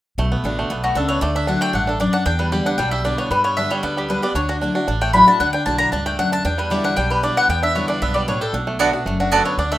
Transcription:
0.18 upright bass B1, steel-string acoustic guitar B2, five-string banjo A3
0.32 five-string banjo B3
0.43 upright bass A1, steel-string acoustic guitar D3 A3 B3 F#4, five-string banjo D4
0.59 five-string banjo A3
0.70 upright bass B1, steel-string acoustic guitar B2, five-string banjo B3
0.84 five-string banjo A3, mandolin F#4
0.95 upright bass C#2, steel-string acoustic guitar C#3, five-string banjo D4, mandolin A4
1.09 five-string banjo B3, mandolin C#5
1.21 upright bass D2, steel-string acoustic guitar D3, five-string banjo A3, mandolin D5
1.35 five-string banjo D4, mandolin E5
1.47 steel-string acoustic guitar F#3 A3 E4 F#4, five-string banjo D4, mandolin F#5
1.61 five-string banjo A3, mandolin G5
1.73 upright bass A1, steel-string acoustic guitar G2, five-string banjo D4, mandolin F#5
1.87 five-string banjo D4, mandolin A4
2.00 steel-string acoustic guitar F#2, five-string banjo D4, mandolin D5
2.13 five-string banjo D4, mandolin F#5
2.26 steel-string acoustic guitar E2, upright bass E2, five-string banjo D4, mandolin G5
2.39 five-string banjo G3, mandolin B4
2.52 steel-string acoustic guitar D3 G3 B3 E4, five-string banjo G4, mandolin D5
2.66 five-string banjo D4, mandolin F#5
2.78 upright bass B1, steel-string acoustic guitar B2, five-string banjo G3, mandolin G5
2.91 five-string banjo G4, mandolin E5
3.04 steel-string acoustic guitar D3 G3 B3 E4, five-string banjo D4, mandolin D5
3.18 five-string banjo B3, mandolin C#5
3.31 upright bass G2, steel-string acoustic guitar G2, five-string banjo G3, mandolin B4
3.44 five-string banjo B3, mandolin C#5
3.57 steel-string acoustic guitar D3 G3 B3 G4, five-string banjo D4, mandolin E5
3.71 five-string banjo G3, mandolin C#5
3.83 upright bass D2, steel-string acoustic guitar D3, five-string banjo B3, mandolin D5
3.97 five-string banjo G3, mandolin G4
4.09 steel-string acoustic guitar D3 G3 B3 G4, five-string banjo D4, mandolin B4
4.22 five-string banjo B3, steel-string acoustic guitar B3 G4, mandolin D5
4.35 upright bass D2, steel-string acoustic guitar D3, five-string banjo D4, mandolin C#5
4.49 five-string banjo D4, mandolin F#4
4.61 steel-string acoustic guitar F#3 A3 E4 F#4, five-string banjo D4
4.75 five-string banjo D4, steel-string acoustic guitar E4 F#4
4.88 upright bass A1, steel-string acoustic guitar A2, five-string banjo D4
5.01 five-string banjo A3, mandolin G5
5.13 steel-string acoustic guitar F#3 A3 E4 F#4, five-string banjo D4, mandolin B5
5.27 five-string banjo D4, steel-string acoustic guitar E4 F#4, mandolin A5
5.40 upright bass D2, steel-string acoustic guitar D3, five-string banjo D4, mandolin F#5
5.53 five-string banjo D4, mandolin G5
5.66 upright bass B1, steel-string acoustic guitar F#3 A3 E4 F#4, five-string banjo D4, mandolin A5
5.78 five-string banjo D4, mandolin A#5
5.92 upright bass C#2, steel-string acoustic guitar G2, five-string banjo D4, mandolin A5
6.06 five-string banjo A3, mandolin G5
6.19 upright bass D2, steel-string acoustic guitar F#2, five-string banjo D4, mandolin F#5
6.32 five-string banjo D4, mandolin A5
6.45 steel-string acoustic guitar E2, upright bass E2, five-string banjo D4, mandolin G5
6.58 five-string banjo G3, mandolin B4
6.70 steel-string acoustic guitar D3 G3 B3 E4, five-string banjo G4, mandolin D5
6.84 five-string banjo D4, mandolin F#5
6.96 upright bass B1, steel-string acoustic guitar B2, five-string banjo G3, mandolin G5
7.10 five-string banjo G4, mandolin B4
7.23 steel-string acoustic guitar D3 G3 B3 E4, five-string banjo D4, mandolin D5
7.37 five-string banjo B3, mandolin F#5
7.49 upright bass E2, steel-string acoustic guitar E2, five-string banjo B3, mandolin G5
7.62 five-string banjo D4, mandolin E5
7.75 steel-string acoustic guitar D3 G3 B3 E4, five-string banjo B3, mandolin C#5
7.88 five-string banjo D4, mandolin D5
8.02 upright bass B1, steel-string acoustic guitar G2, five-string banjo B3, mandolin E5
8.14 five-string banjo G3, mandolin D5
8.28 steel-string acoustic guitar A2, five-string banjo D4, mandolin C#5
8.41 five-string banjo G4, mandolin A4
8.53 upright bass B1, steel-string acoustic guitar B2, five-string banjo D4
8.67 five-string banjo A3
8.79 steel-string acoustic guitar D3 A3 B3 F#4, mandolin B3 F#4 D5 A5, five-string banjo D4
8.93 steel-string acoustic guitar B3 F#4, five-string banjo D4
9.06 upright bass F#1, steel-string acoustic guitar F#2, five-string banjo A3
9.20 five-string banjo D4, mandolin F#4
9.32 steel-string acoustic guitar D3 A3 B3 F#4, mandolin B3 F#4 A4 D5 A5, five-string banjo D4
9.45 five-string banjo B3, mandolin C#5
9.57 upright bass D2, steel-string acoustic guitar D3, five-string banjo D4, mandolin D5
9.72 five-string banjo A3, mandolin E5

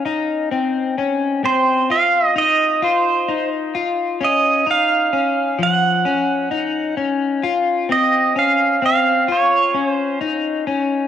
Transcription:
0.05 clean electric guitar D#4
0.51 clean electric guitar C4
0.98 clean electric guitar C#4
1.44 clean electric guitar C4, pedal steel guitar C5
1.90 clean electric guitar F4, pedal steel guitar F5
2.36 clean electric guitar D#4, pedal steel guitar D#5
2.82 clean electric guitar F4, pedal steel guitar C5
3.28 clean electric guitar D#4
3.75 clean electric guitar F4
4.21 clean electric guitar C#4, pedal steel guitar D#5
4.67 clean electric guitar D#4
4.71 pedal steel guitar F5
5.13 clean electric guitar C#4
5.59 clean electric guitar F3
5.63 pedal steel guitar F#5
6.05 clean electric guitar C#4
6.51 clean electric guitar D#4
6.97 clean electric guitar C#4
7.43 clean electric guitar F4
7.89 clean electric guitar C4, pedal steel guitar D#5
8.36 clean electric guitar C#4, pedal steel guitar F5
8.82 clean electric guitar C4, pedal steel guitar F5
9.28 clean electric guitar F4, pedal steel guitar C#5
9.74 clean electric guitar C#4
9.91 pedal steel guitar C5
10.21 clean electric guitar D#4
10.67 clean electric guitar C#4

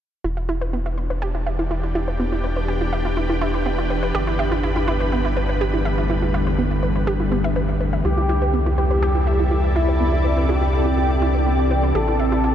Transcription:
0.24 analog synth bass E1, synth drone E2, ambient pad D4 E4 B4 F#5, synth arpeggio sound E4
0.37 synth arpeggio sound E4
0.49 synth arpeggio sound E4
0.61 synth arpeggio sound B4
0.73 synth arpeggio sound B3
0.86 synth arpeggio sound E4
0.94 ambient pad G4, synth arpeggio sound B4
1.10 synth arpeggio sound B4
1.22 synth arpeggio sound G4
1.35 synth arpeggio sound E4
1.46 synth arpeggio sound E5
1.58 synth arpeggio sound E4, ambient pad B4
1.71 synth arpeggio sound E4
1.83 synth arpeggio sound E4
1.95 synth arpeggio sound E4
2.08 synth arpeggio sound B4
2.20 synth arpeggio sound B3
2.32 synth arpeggio sound E4
2.44 synth arpeggio sound B4
2.57 synth arpeggio sound B4
2.68 synth arpeggio sound G4
2.81 synth arpeggio sound E4
2.93 synth arpeggio sound E5
3.05 synth arpeggio sound E4
3.17 synth arpeggio sound E4
3.30 synth arpeggio sound E4
3.41 synth arpeggio sound E4
3.54 synth arpeggio sound B4
3.66 synth arpeggio sound B3
3.78 synth arpeggio sound E4
3.90 synth arpeggio sound B4
4.03 synth arpeggio sound B4
4.15 analog synth bass G1, ambient pad G3 D4 A4, synth arpeggio sound G4
4.27 synth arpeggio sound E4
4.39 synth arpeggio sound E5
4.52 synth arpeggio sound E4
4.63 synth arpeggio sound E4
4.76 synth arpeggio sound E4
4.88 synth arpeggio sound E4
5.00 synth arpeggio sound B4
5.12 synth arpeggio sound B3
5.25 synth arpeggio sound E4
5.37 synth arpeggio sound B4
5.49 synth arpeggio sound B4
5.61 synth arpeggio sound G4
5.74 synth arpeggio sound E4
5.85 synth arpeggio sound E5
5.98 synth arpeggio sound E4
6.10 synth arpeggio sound E4
6.22 synth arpeggio sound E4
6.34 synth arpeggio sound E4
6.47 synth arpeggio sound B4
6.59 synth arpeggio sound B3
6.71 synth arpeggio sound E4
6.83 synth arpeggio sound B4
6.96 synth arpeggio sound B4
7.07 synth arpeggio sound G4
7.20 synth arpeggio sound E4
7.32 synth arpeggio sound B3
7.44 synth arpeggio sound E5
7.56 synth arpeggio sound B4
7.69 synth arpeggio sound D4
7.80 synth arpeggio sound B4
7.93 synth arpeggio sound E5
8.05 analog synth bass C2, ambient pad C4 E4 G4 D5, synth arpeggio sound E4, analog synth lead G4
8.14 synth arpeggio sound E4, ambient pad A4
8.29 synth arpeggio sound E4
8.42 synth arpeggio sound B4
8.54 synth arpeggio sound B3, ambient pad D5
8.66 synth arpeggio sound E4
8.78 analog synth lead G4, synth arpeggio sound B4
8.91 synth arpeggio sound B4
9.03 synth arpeggio sound G4
9.15 synth arpeggio sound E4
9.27 synth arpeggio sound E5
9.39 synth arpeggio sound E4
9.51 synth arpeggio sound E4
9.64 synth arpeggio sound E4
9.75 analog synth lead E4, synth arpeggio sound E4
9.88 synth arpeggio sound B4
10.00 synth arpeggio sound B3, ambient pad F#5
10.13 synth arpeggio sound E4
10.24 synth arpeggio sound B4
10.37 synth arpeggio sound B4
10.49 analog synth lead G4, synth arpeggio sound G4
10.61 synth arpeggio sound E4
10.73 synth arpeggio sound E5
10.86 synth arpeggio sound E4
10.98 synth arpeggio sound E4
11.10 synth arpeggio sound E4
11.22 synth arpeggio sound E4
11.35 synth arpeggio sound B4
11.46 synth arpeggio sound B3
11.59 synth arpeggio sound E4
11.71 synth arpeggio sound B4
11.83 synth arpeggio sound B4
11.95 analog synth bass A1, ambient pad A3 D4 E4 B4, synth arpeggio sound G4, analog synth lead A4
12.08 synth arpeggio sound E4
12.19 synth arpeggio sound E5
12.32 synth arpeggio sound E4
12.39 ambient pad C4
12.44 synth arpeggio sound E4

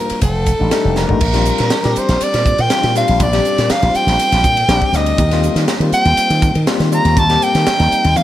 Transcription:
Already playing: tine electric piano G3 A#3 D4 F4
0.00 soprano saxophone A#4
0.10 muted slap bass stroke, ride
0.21 slap bass F1, soprano saxophone A4, kick, hi-hat pedal, ride
0.46 kick, hi-hat pedal, ride
0.59 slap bass A1, tine electric piano G3 A3 D4 D#4
0.70 tine electric piano G3 A3 D4 D#4, snare, hi-hat pedal, ride
0.85 slap bass F1
0.96 soprano saxophone A#4, snare, hi-hat pedal
1.08 slap bass A1, tine electric piano G3 A3 D4 D#4, floor tom
1.21 slap bass A#1, kick, crash
1.33 tine electric piano G3 C4 D4 F4, snare, ride
1.45 hi-hat pedal
1.58 slap bass A#2, snare, ride
1.70 snare, hi-hat pedal, ride
1.83 slap bass A#2, tine electric piano G3 C4 D4 G4, snare, ride
1.96 soprano saxophone C5, muted slap bass stroke, hi-hat pedal
2.09 slap bass A#1, snare, ride
2.21 soprano saxophone D5, muted slap bass stroke, hi-hat pedal, ride
2.34 slap bass A#2, snare, ride
2.46 kick, hi-hat pedal
2.58 slap bass A#2, soprano saxophone G5, ride
2.70 tine electric piano G3 C4 D4 F4, snare, hi-hat pedal, ride
2.83 slap bass A#2, snare, ride
2.95 tine electric piano G3 C4 D4 F4, soprano saxophone F5, snare, hi-hat pedal
3.08 slap bass A#1, ride
3.20 slap bass A#1, soprano saxophone D5, kick, hi-hat pedal, ride
3.32 tine electric piano G3 C4 D4 G4, snare, ride
3.45 hi-hat pedal
3.58 slap bass A#2, snare, ride
3.70 soprano saxophone F5, muted slap bass stroke, snare, hi-hat pedal, ride
3.82 slap bass A#1, tine electric piano G3 C4 D4 F4, ride
3.94 soprano saxophone G5, hi-hat pedal
4.07 slap bass A#1, snare, ride
4.19 hi-hat pedal, ride
4.32 slap bass A#1, snare, ride
4.44 slap bass A#2, kick, hi-hat pedal
4.57 ride
4.68 slap bass A#1, tine electric piano G3 C4 D4 G4, snare, hi-hat pedal, ride
4.81 kick, ride
4.93 slap bass D2, tine electric piano G3 C4 D4 G4, soprano saxophone D#5, snare, hi-hat pedal
5.06 ride
5.18 slap bass D#2, kick, hi-hat pedal, ride
5.31 tine electric piano G3 A#3 C4 F4, snare, ride
5.43 hi-hat pedal
5.56 slap bass D#3, snare, ride
5.68 snare, hi-hat pedal, ride
5.80 slap bass D#3, tine electric piano G3 A#3 C4 F4, ride
5.92 soprano saxophone G5, muted slap bass stroke, hi-hat pedal
6.05 slap bass D#2, ride
6.17 muted slap bass stroke, hi-hat pedal, ride
6.30 slap bass D#3, ride
6.42 kick, hi-hat pedal
6.55 slap bass D#3, ride
6.67 tine electric piano G3 A#3 C4 F4, snare, hi-hat pedal, ride
6.80 slap bass D#3, snare, ride
6.91 tine electric piano G3 A#3 C4 F4, soprano saxophone A#5, hi-hat pedal
7.05 slap bass D#2, ride
7.17 slap bass D#2, soprano saxophone A5, kick, hi-hat pedal, ride
7.29 tine electric piano G3 A#3 C4 G4, snare, ride
7.42 soprano saxophone G5, hi-hat pedal
7.55 slap bass D#3, snare, ride
7.66 muted slap bass stroke, snare, hi-hat pedal, ride
7.79 slap bass D#2, tine electric piano G3 A#3 C4 D#4, snare, ride
7.92 muted slap bass stroke, hi-hat pedal
8.04 slap bass D#2, ride
8.16 soprano saxophone F5, hi-hat pedal, high tom

